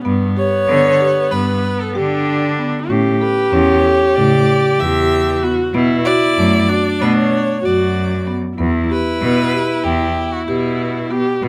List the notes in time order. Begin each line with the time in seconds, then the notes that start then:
0.05 G2 B3
0.37 G4 C#5
0.68 D3 B3
1.00 G4
1.31 G2 B3 B4
1.80 A4
1.94 D3 D4 G4
2.58 B3
2.89 A2 C#4 G4
3.21 A4 B4
3.52 E2 C#4 C#5
3.85 A4
4.16 A2 C#3 D5
4.79 E2 G4 E5
5.43 B3 F#4
5.74 B2 B3 E4
6.05 F#4 D5
6.38 F#2 A3
6.69 D4 F#4
7.01 B2 A3 B4
7.17 C#5
7.63 F#2 F#4 D5
8.27 B3
8.58 E2 B3 E4
8.90 G4 B4
9.21 B2 B3
9.53 G4
9.84 E2 B3 G4
10.32 F#4
10.47 B2 E4 G4
11.10 B3 G4
11.42 B2 B3 F#4